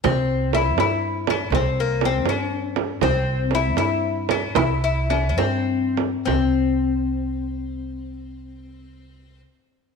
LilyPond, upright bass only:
\new Staff \with { instrumentName = "Upright bass" } { \clef bass \time 6/8 \tempo 4. = 75 c,4. g,4. | c,4. g,4. | c,4. g,4. | c,4. g,4. |
c,2.~ | c,2. | }